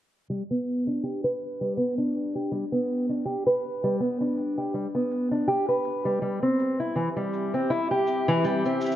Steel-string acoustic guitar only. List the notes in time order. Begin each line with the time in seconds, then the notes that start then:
0.30 G3
0.51 B3
0.87 D4
1.03 G4
1.24 B4
1.61 G3
1.77 B3
1.98 D4
2.35 G4
2.52 G3
2.72 B3
3.09 D4
3.26 G4
3.47 B4
3.84 G3
4.00 B3
4.21 D4
4.58 G4
4.74 G3
4.95 B3
5.31 D4
5.48 G4
5.69 B4
6.05 G3
6.22 G3
6.43 C4
6.80 E4
6.96 E3
7.17 G3
7.54 C4
7.70 E4
7.91 G4
8.28 E3
8.44 G3
8.66 C4